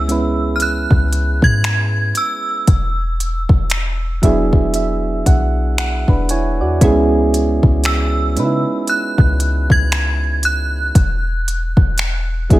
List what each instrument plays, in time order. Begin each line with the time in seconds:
Already playing: 808-style bass C#2, synth keys G#3 B3 C#4 E4 G#4, synth bell E6
0.08 synth keys G#3 B3 C#4 E4 B4, closed hi-hat
0.56 synth bell F6
0.60 synth bell F#6, closed hi-hat
0.91 808-style bass C#2, kick
1.13 closed hi-hat
1.42 808-style bass G#2, synth bell G#6, kick
1.64 finger snap, closed hi-hat
2.15 synth bell E6, closed hi-hat
2.67 808-style bass E1, kick, closed hi-hat
3.20 closed hi-hat
3.49 808-style bass E1, kick
3.70 finger snap, closed hi-hat
4.22 808-style bass E1, synth keys F#3 B3 D4 E4 G#4 E5, kick, closed hi-hat
4.53 kick
4.74 synth keys E5, closed hi-hat
5.26 808-style bass B1, synth keys F#5, kick, closed hi-hat
5.78 synth keys F#5, finger snap, closed hi-hat
6.08 808-style bass E1, synth keys D4 B4, kick
6.29 synth keys E4 C#5 G#5, closed hi-hat
6.60 808-style bass E2, synth keys F#4 D5
6.81 808-style bass C#2, synth keys G#3 B3 C#4 E4 G#4, kick, closed hi-hat
7.34 closed hi-hat
7.63 808-style bass C#2, kick
7.84 synth bell E6, finger snap, closed hi-hat
8.36 808-style bass C#3, synth keys G#3 B3 C#4 D#4 B4, closed hi-hat
8.45 synth keys E4
8.87 synth bell F#6, closed hi-hat
9.18 808-style bass C#2, kick
9.40 closed hi-hat
9.70 808-style bass C#2, synth bell G#6, kick
9.92 finger snap, closed hi-hat
10.43 synth bell F#6, closed hi-hat
10.95 808-style bass E1, kick, closed hi-hat
11.48 closed hi-hat
11.77 808-style bass E1, kick
11.98 finger snap, closed hi-hat
12.49 808-style bass E1, synth keys F#3 B3 D4 E4 G#4, kick, closed hi-hat